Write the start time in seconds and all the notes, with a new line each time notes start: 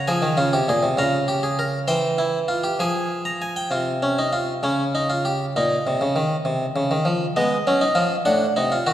0.08 F3 G#4 G#5
0.22 D#3
0.37 C#3 F4
0.53 C3 G4
0.68 A#2 G#4
0.83 C3
0.97 C#3 F4 A#5
1.28 G4
1.43 G#4
1.59 A#4
1.88 E3 C5 G5
2.18 E4
2.48 F4
2.64 G4
2.79 F3 G#4 G#5
3.25 A#5
3.42 G#5
3.56 G5
3.71 C3 F4
4.03 C#4
4.19 D#4
4.33 F4
4.63 C#3 C#4
4.95 D#4
5.10 F4
5.25 G4
5.56 A#2 D#4
5.87 C3
6.01 C#3
6.16 D#3
6.45 C3
6.76 C#3
6.91 D#3
7.05 F3
7.36 G#3 B3 D#5
7.67 F#3 C#4
7.81 D#4
7.95 F3 F4
8.25 A2 D4 F#5
8.56 C3 D#4
8.72 F4
8.87 D#3 F#4